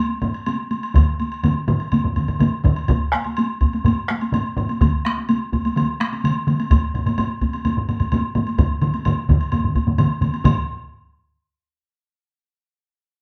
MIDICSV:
0, 0, Header, 1, 3, 480
1, 0, Start_track
1, 0, Tempo, 485830
1, 937, Time_signature, 4, 2, 24, 8
1, 3331, Tempo, 476948
1, 6691, Tempo, 468019
1, 10051, Tempo, 459770
1, 13418, End_track
2, 0, Start_track
2, 0, Title_t, "Taiko and cinematic ensemble drums"
2, 92, Note_on_c, 9, 48, 43
2, 191, Note_off_c, 9, 48, 0
2, 214, Note_on_c, 9, 45, 86
2, 218, Note_on_c, 9, 48, 49
2, 313, Note_off_c, 9, 45, 0
2, 317, Note_off_c, 9, 48, 0
2, 344, Note_on_c, 9, 48, 19
2, 443, Note_off_c, 9, 48, 0
2, 461, Note_on_c, 9, 48, 70
2, 560, Note_off_c, 9, 48, 0
2, 583, Note_on_c, 9, 48, 20
2, 682, Note_off_c, 9, 48, 0
2, 700, Note_on_c, 9, 48, 48
2, 799, Note_off_c, 9, 48, 0
2, 822, Note_on_c, 9, 48, 21
2, 921, Note_off_c, 9, 48, 0
2, 935, Note_on_c, 9, 45, 86
2, 941, Note_on_c, 9, 47, 93
2, 942, Note_on_c, 9, 41, 83
2, 942, Note_on_c, 9, 48, 58
2, 1034, Note_off_c, 9, 45, 0
2, 1039, Note_off_c, 9, 47, 0
2, 1041, Note_off_c, 9, 41, 0
2, 1041, Note_off_c, 9, 48, 0
2, 1067, Note_on_c, 9, 48, 20
2, 1166, Note_off_c, 9, 48, 0
2, 1184, Note_on_c, 9, 48, 47
2, 1283, Note_off_c, 9, 48, 0
2, 1307, Note_on_c, 9, 48, 21
2, 1405, Note_off_c, 9, 48, 0
2, 1416, Note_on_c, 9, 47, 97
2, 1417, Note_on_c, 9, 45, 83
2, 1425, Note_on_c, 9, 48, 65
2, 1515, Note_off_c, 9, 47, 0
2, 1516, Note_off_c, 9, 45, 0
2, 1524, Note_off_c, 9, 48, 0
2, 1543, Note_on_c, 9, 48, 20
2, 1642, Note_off_c, 9, 48, 0
2, 1657, Note_on_c, 9, 47, 97
2, 1658, Note_on_c, 9, 45, 97
2, 1662, Note_on_c, 9, 48, 47
2, 1756, Note_off_c, 9, 47, 0
2, 1757, Note_off_c, 9, 45, 0
2, 1761, Note_off_c, 9, 48, 0
2, 1786, Note_on_c, 9, 48, 19
2, 1885, Note_off_c, 9, 48, 0
2, 1899, Note_on_c, 9, 45, 62
2, 1900, Note_on_c, 9, 47, 64
2, 1907, Note_on_c, 9, 48, 64
2, 1998, Note_off_c, 9, 45, 0
2, 1999, Note_off_c, 9, 47, 0
2, 2006, Note_off_c, 9, 48, 0
2, 2019, Note_on_c, 9, 47, 73
2, 2020, Note_on_c, 9, 45, 68
2, 2028, Note_on_c, 9, 48, 43
2, 2118, Note_off_c, 9, 47, 0
2, 2119, Note_off_c, 9, 45, 0
2, 2127, Note_off_c, 9, 48, 0
2, 2136, Note_on_c, 9, 45, 67
2, 2141, Note_on_c, 9, 47, 66
2, 2146, Note_on_c, 9, 48, 49
2, 2235, Note_off_c, 9, 45, 0
2, 2240, Note_off_c, 9, 47, 0
2, 2245, Note_off_c, 9, 48, 0
2, 2256, Note_on_c, 9, 45, 70
2, 2256, Note_on_c, 9, 47, 57
2, 2262, Note_on_c, 9, 48, 19
2, 2355, Note_off_c, 9, 45, 0
2, 2355, Note_off_c, 9, 47, 0
2, 2361, Note_off_c, 9, 48, 0
2, 2373, Note_on_c, 9, 47, 94
2, 2377, Note_on_c, 9, 45, 83
2, 2383, Note_on_c, 9, 48, 64
2, 2472, Note_off_c, 9, 47, 0
2, 2476, Note_off_c, 9, 45, 0
2, 2482, Note_off_c, 9, 48, 0
2, 2611, Note_on_c, 9, 47, 84
2, 2612, Note_on_c, 9, 45, 102
2, 2618, Note_on_c, 9, 41, 60
2, 2710, Note_off_c, 9, 47, 0
2, 2711, Note_off_c, 9, 45, 0
2, 2717, Note_off_c, 9, 41, 0
2, 2748, Note_on_c, 9, 48, 19
2, 2846, Note_off_c, 9, 48, 0
2, 2847, Note_on_c, 9, 45, 88
2, 2855, Note_on_c, 9, 41, 90
2, 2863, Note_on_c, 9, 48, 63
2, 2946, Note_off_c, 9, 45, 0
2, 2954, Note_off_c, 9, 41, 0
2, 2962, Note_off_c, 9, 48, 0
2, 3087, Note_on_c, 9, 37, 67
2, 3099, Note_on_c, 9, 48, 46
2, 3186, Note_off_c, 9, 37, 0
2, 3198, Note_off_c, 9, 48, 0
2, 3220, Note_on_c, 9, 48, 50
2, 3318, Note_off_c, 9, 48, 0
2, 3340, Note_on_c, 9, 48, 66
2, 3441, Note_off_c, 9, 48, 0
2, 3570, Note_on_c, 9, 41, 73
2, 3583, Note_on_c, 9, 48, 53
2, 3671, Note_off_c, 9, 41, 0
2, 3683, Note_off_c, 9, 48, 0
2, 3704, Note_on_c, 9, 48, 54
2, 3805, Note_off_c, 9, 48, 0
2, 3808, Note_on_c, 9, 45, 94
2, 3828, Note_on_c, 9, 48, 67
2, 3909, Note_off_c, 9, 45, 0
2, 3928, Note_off_c, 9, 48, 0
2, 4051, Note_on_c, 9, 37, 68
2, 4069, Note_on_c, 9, 48, 51
2, 4152, Note_off_c, 9, 37, 0
2, 4169, Note_off_c, 9, 48, 0
2, 4188, Note_on_c, 9, 48, 50
2, 4289, Note_off_c, 9, 48, 0
2, 4293, Note_on_c, 9, 45, 90
2, 4306, Note_on_c, 9, 48, 68
2, 4394, Note_off_c, 9, 45, 0
2, 4406, Note_off_c, 9, 48, 0
2, 4533, Note_on_c, 9, 45, 96
2, 4548, Note_on_c, 9, 48, 49
2, 4634, Note_off_c, 9, 45, 0
2, 4648, Note_off_c, 9, 48, 0
2, 4667, Note_on_c, 9, 48, 58
2, 4767, Note_off_c, 9, 48, 0
2, 4775, Note_on_c, 9, 47, 89
2, 4779, Note_on_c, 9, 41, 97
2, 4786, Note_on_c, 9, 48, 65
2, 4875, Note_off_c, 9, 47, 0
2, 4879, Note_off_c, 9, 41, 0
2, 4887, Note_off_c, 9, 48, 0
2, 5020, Note_on_c, 9, 37, 73
2, 5029, Note_on_c, 9, 48, 54
2, 5121, Note_off_c, 9, 37, 0
2, 5129, Note_off_c, 9, 48, 0
2, 5147, Note_on_c, 9, 48, 51
2, 5247, Note_off_c, 9, 48, 0
2, 5262, Note_on_c, 9, 48, 69
2, 5363, Note_off_c, 9, 48, 0
2, 5502, Note_on_c, 9, 41, 68
2, 5506, Note_on_c, 9, 48, 50
2, 5602, Note_off_c, 9, 41, 0
2, 5606, Note_off_c, 9, 48, 0
2, 5623, Note_on_c, 9, 48, 55
2, 5724, Note_off_c, 9, 48, 0
2, 5741, Note_on_c, 9, 47, 95
2, 5745, Note_on_c, 9, 48, 68
2, 5842, Note_off_c, 9, 47, 0
2, 5845, Note_off_c, 9, 48, 0
2, 5978, Note_on_c, 9, 48, 51
2, 5979, Note_on_c, 9, 37, 70
2, 6079, Note_off_c, 9, 48, 0
2, 6080, Note_off_c, 9, 37, 0
2, 6102, Note_on_c, 9, 48, 51
2, 6203, Note_off_c, 9, 48, 0
2, 6218, Note_on_c, 9, 47, 99
2, 6220, Note_on_c, 9, 48, 67
2, 6318, Note_off_c, 9, 47, 0
2, 6321, Note_off_c, 9, 48, 0
2, 6448, Note_on_c, 9, 47, 94
2, 6461, Note_on_c, 9, 48, 50
2, 6549, Note_off_c, 9, 47, 0
2, 6561, Note_off_c, 9, 48, 0
2, 6579, Note_on_c, 9, 48, 53
2, 6680, Note_off_c, 9, 48, 0
2, 6688, Note_on_c, 9, 41, 80
2, 6690, Note_on_c, 9, 45, 86
2, 6700, Note_on_c, 9, 48, 62
2, 6790, Note_off_c, 9, 41, 0
2, 6793, Note_off_c, 9, 45, 0
2, 6802, Note_off_c, 9, 48, 0
2, 6931, Note_on_c, 9, 45, 71
2, 6939, Note_on_c, 9, 48, 47
2, 7034, Note_off_c, 9, 45, 0
2, 7041, Note_off_c, 9, 48, 0
2, 7050, Note_on_c, 9, 45, 74
2, 7061, Note_on_c, 9, 48, 47
2, 7153, Note_off_c, 9, 45, 0
2, 7164, Note_off_c, 9, 48, 0
2, 7171, Note_on_c, 9, 45, 87
2, 7179, Note_on_c, 9, 48, 64
2, 7274, Note_off_c, 9, 45, 0
2, 7282, Note_off_c, 9, 48, 0
2, 7412, Note_on_c, 9, 41, 64
2, 7422, Note_on_c, 9, 48, 50
2, 7514, Note_off_c, 9, 41, 0
2, 7525, Note_off_c, 9, 48, 0
2, 7542, Note_on_c, 9, 48, 47
2, 7645, Note_off_c, 9, 48, 0
2, 7653, Note_on_c, 9, 45, 64
2, 7659, Note_on_c, 9, 48, 65
2, 7755, Note_off_c, 9, 45, 0
2, 7762, Note_off_c, 9, 48, 0
2, 7778, Note_on_c, 9, 45, 64
2, 7881, Note_off_c, 9, 45, 0
2, 7897, Note_on_c, 9, 45, 68
2, 7898, Note_on_c, 9, 48, 47
2, 8000, Note_off_c, 9, 45, 0
2, 8001, Note_off_c, 9, 48, 0
2, 8016, Note_on_c, 9, 45, 67
2, 8027, Note_on_c, 9, 48, 44
2, 8119, Note_off_c, 9, 45, 0
2, 8130, Note_off_c, 9, 48, 0
2, 8137, Note_on_c, 9, 45, 87
2, 8149, Note_on_c, 9, 48, 62
2, 8239, Note_off_c, 9, 45, 0
2, 8251, Note_off_c, 9, 48, 0
2, 8374, Note_on_c, 9, 45, 91
2, 8384, Note_on_c, 9, 48, 47
2, 8477, Note_off_c, 9, 45, 0
2, 8487, Note_off_c, 9, 48, 0
2, 8503, Note_on_c, 9, 48, 44
2, 8605, Note_off_c, 9, 48, 0
2, 8613, Note_on_c, 9, 41, 85
2, 8615, Note_on_c, 9, 47, 88
2, 8617, Note_on_c, 9, 45, 90
2, 8620, Note_on_c, 9, 48, 58
2, 8716, Note_off_c, 9, 41, 0
2, 8718, Note_off_c, 9, 47, 0
2, 8719, Note_off_c, 9, 45, 0
2, 8723, Note_off_c, 9, 48, 0
2, 8856, Note_on_c, 9, 45, 85
2, 8858, Note_on_c, 9, 47, 94
2, 8864, Note_on_c, 9, 48, 46
2, 8959, Note_off_c, 9, 45, 0
2, 8961, Note_off_c, 9, 47, 0
2, 8966, Note_off_c, 9, 48, 0
2, 8978, Note_on_c, 9, 48, 48
2, 9081, Note_off_c, 9, 48, 0
2, 9097, Note_on_c, 9, 47, 98
2, 9098, Note_on_c, 9, 45, 87
2, 9102, Note_on_c, 9, 48, 65
2, 9200, Note_off_c, 9, 45, 0
2, 9200, Note_off_c, 9, 47, 0
2, 9204, Note_off_c, 9, 48, 0
2, 9334, Note_on_c, 9, 41, 60
2, 9337, Note_on_c, 9, 47, 95
2, 9337, Note_on_c, 9, 48, 46
2, 9342, Note_on_c, 9, 45, 93
2, 9437, Note_off_c, 9, 41, 0
2, 9439, Note_off_c, 9, 47, 0
2, 9439, Note_off_c, 9, 48, 0
2, 9445, Note_off_c, 9, 45, 0
2, 9576, Note_on_c, 9, 45, 65
2, 9577, Note_on_c, 9, 48, 68
2, 9578, Note_on_c, 9, 47, 68
2, 9679, Note_off_c, 9, 45, 0
2, 9680, Note_off_c, 9, 48, 0
2, 9681, Note_off_c, 9, 47, 0
2, 9696, Note_on_c, 9, 47, 63
2, 9697, Note_on_c, 9, 45, 67
2, 9798, Note_off_c, 9, 47, 0
2, 9800, Note_off_c, 9, 45, 0
2, 9809, Note_on_c, 9, 41, 70
2, 9821, Note_on_c, 9, 48, 47
2, 9911, Note_off_c, 9, 41, 0
2, 9923, Note_off_c, 9, 48, 0
2, 9930, Note_on_c, 9, 45, 72
2, 9936, Note_on_c, 9, 47, 61
2, 9936, Note_on_c, 9, 48, 49
2, 10033, Note_off_c, 9, 45, 0
2, 10038, Note_off_c, 9, 47, 0
2, 10039, Note_off_c, 9, 48, 0
2, 10046, Note_on_c, 9, 45, 91
2, 10053, Note_on_c, 9, 47, 105
2, 10054, Note_on_c, 9, 48, 68
2, 10151, Note_off_c, 9, 45, 0
2, 10157, Note_off_c, 9, 47, 0
2, 10159, Note_off_c, 9, 48, 0
2, 10287, Note_on_c, 9, 45, 68
2, 10297, Note_on_c, 9, 47, 64
2, 10299, Note_on_c, 9, 48, 43
2, 10391, Note_off_c, 9, 45, 0
2, 10401, Note_off_c, 9, 47, 0
2, 10404, Note_off_c, 9, 48, 0
2, 10417, Note_on_c, 9, 48, 52
2, 10521, Note_off_c, 9, 48, 0
2, 10530, Note_on_c, 9, 41, 66
2, 10531, Note_on_c, 9, 45, 103
2, 10534, Note_on_c, 9, 47, 102
2, 10535, Note_on_c, 9, 48, 69
2, 10635, Note_off_c, 9, 41, 0
2, 10635, Note_off_c, 9, 45, 0
2, 10638, Note_off_c, 9, 47, 0
2, 10640, Note_off_c, 9, 48, 0
2, 13418, End_track
3, 0, Start_track
3, 0, Title_t, "Drums"
3, 215, Note_on_c, 9, 76, 39
3, 313, Note_off_c, 9, 76, 0
3, 340, Note_on_c, 9, 76, 39
3, 439, Note_off_c, 9, 76, 0
3, 459, Note_on_c, 9, 76, 50
3, 557, Note_off_c, 9, 76, 0
3, 700, Note_on_c, 9, 76, 36
3, 799, Note_off_c, 9, 76, 0
3, 823, Note_on_c, 9, 76, 44
3, 921, Note_off_c, 9, 76, 0
3, 945, Note_on_c, 9, 76, 52
3, 1044, Note_off_c, 9, 76, 0
3, 1181, Note_on_c, 9, 76, 39
3, 1280, Note_off_c, 9, 76, 0
3, 1302, Note_on_c, 9, 76, 39
3, 1400, Note_off_c, 9, 76, 0
3, 1419, Note_on_c, 9, 76, 48
3, 1518, Note_off_c, 9, 76, 0
3, 1659, Note_on_c, 9, 76, 41
3, 1757, Note_off_c, 9, 76, 0
3, 1778, Note_on_c, 9, 76, 41
3, 1877, Note_off_c, 9, 76, 0
3, 1895, Note_on_c, 9, 76, 49
3, 1993, Note_off_c, 9, 76, 0
3, 2135, Note_on_c, 9, 76, 42
3, 2234, Note_off_c, 9, 76, 0
3, 2256, Note_on_c, 9, 76, 38
3, 2354, Note_off_c, 9, 76, 0
3, 2376, Note_on_c, 9, 76, 47
3, 2475, Note_off_c, 9, 76, 0
3, 2617, Note_on_c, 9, 76, 40
3, 2716, Note_off_c, 9, 76, 0
3, 2731, Note_on_c, 9, 76, 43
3, 2830, Note_off_c, 9, 76, 0
3, 2848, Note_on_c, 9, 76, 47
3, 2947, Note_off_c, 9, 76, 0
3, 3089, Note_on_c, 9, 76, 38
3, 3187, Note_off_c, 9, 76, 0
3, 3206, Note_on_c, 9, 76, 35
3, 3304, Note_off_c, 9, 76, 0
3, 3327, Note_on_c, 9, 76, 53
3, 3427, Note_off_c, 9, 76, 0
3, 3568, Note_on_c, 9, 76, 39
3, 3669, Note_off_c, 9, 76, 0
3, 3695, Note_on_c, 9, 76, 39
3, 3796, Note_off_c, 9, 76, 0
3, 3821, Note_on_c, 9, 76, 48
3, 3921, Note_off_c, 9, 76, 0
3, 4055, Note_on_c, 9, 76, 36
3, 4156, Note_off_c, 9, 76, 0
3, 4179, Note_on_c, 9, 76, 36
3, 4279, Note_off_c, 9, 76, 0
3, 4304, Note_on_c, 9, 76, 49
3, 4405, Note_off_c, 9, 76, 0
3, 4543, Note_on_c, 9, 76, 36
3, 4644, Note_off_c, 9, 76, 0
3, 4661, Note_on_c, 9, 76, 38
3, 4761, Note_off_c, 9, 76, 0
3, 4784, Note_on_c, 9, 76, 45
3, 4884, Note_off_c, 9, 76, 0
3, 5020, Note_on_c, 9, 76, 38
3, 5121, Note_off_c, 9, 76, 0
3, 5259, Note_on_c, 9, 76, 45
3, 5359, Note_off_c, 9, 76, 0
3, 5505, Note_on_c, 9, 76, 37
3, 5606, Note_off_c, 9, 76, 0
3, 5624, Note_on_c, 9, 76, 38
3, 5725, Note_off_c, 9, 76, 0
3, 5749, Note_on_c, 9, 76, 49
3, 5849, Note_off_c, 9, 76, 0
3, 5984, Note_on_c, 9, 76, 37
3, 6084, Note_off_c, 9, 76, 0
3, 6106, Note_on_c, 9, 76, 37
3, 6207, Note_off_c, 9, 76, 0
3, 6227, Note_on_c, 9, 76, 55
3, 6328, Note_off_c, 9, 76, 0
3, 6457, Note_on_c, 9, 76, 38
3, 6558, Note_off_c, 9, 76, 0
3, 6577, Note_on_c, 9, 76, 44
3, 6678, Note_off_c, 9, 76, 0
3, 6690, Note_on_c, 9, 76, 57
3, 6793, Note_off_c, 9, 76, 0
3, 6937, Note_on_c, 9, 76, 41
3, 7039, Note_off_c, 9, 76, 0
3, 7056, Note_on_c, 9, 76, 43
3, 7158, Note_off_c, 9, 76, 0
3, 7172, Note_on_c, 9, 76, 53
3, 7275, Note_off_c, 9, 76, 0
3, 7414, Note_on_c, 9, 76, 40
3, 7517, Note_off_c, 9, 76, 0
3, 7536, Note_on_c, 9, 76, 41
3, 7638, Note_off_c, 9, 76, 0
3, 7654, Note_on_c, 9, 76, 49
3, 7756, Note_off_c, 9, 76, 0
3, 7898, Note_on_c, 9, 76, 37
3, 8000, Note_off_c, 9, 76, 0
3, 8012, Note_on_c, 9, 76, 38
3, 8115, Note_off_c, 9, 76, 0
3, 8135, Note_on_c, 9, 76, 49
3, 8238, Note_off_c, 9, 76, 0
3, 8374, Note_on_c, 9, 76, 36
3, 8476, Note_off_c, 9, 76, 0
3, 8493, Note_on_c, 9, 76, 37
3, 8596, Note_off_c, 9, 76, 0
3, 8615, Note_on_c, 9, 76, 49
3, 8717, Note_off_c, 9, 76, 0
3, 8851, Note_on_c, 9, 76, 40
3, 8953, Note_off_c, 9, 76, 0
3, 8976, Note_on_c, 9, 76, 38
3, 9078, Note_off_c, 9, 76, 0
3, 9093, Note_on_c, 9, 76, 52
3, 9196, Note_off_c, 9, 76, 0
3, 9341, Note_on_c, 9, 76, 38
3, 9444, Note_off_c, 9, 76, 0
3, 9457, Note_on_c, 9, 76, 38
3, 9560, Note_off_c, 9, 76, 0
3, 9571, Note_on_c, 9, 76, 48
3, 9674, Note_off_c, 9, 76, 0
3, 9815, Note_on_c, 9, 76, 37
3, 9918, Note_off_c, 9, 76, 0
3, 10049, Note_on_c, 9, 76, 53
3, 10154, Note_off_c, 9, 76, 0
3, 10294, Note_on_c, 9, 76, 41
3, 10398, Note_off_c, 9, 76, 0
3, 10418, Note_on_c, 9, 76, 42
3, 10522, Note_off_c, 9, 76, 0
3, 10538, Note_on_c, 9, 76, 75
3, 10642, Note_off_c, 9, 76, 0
3, 13418, End_track
0, 0, End_of_file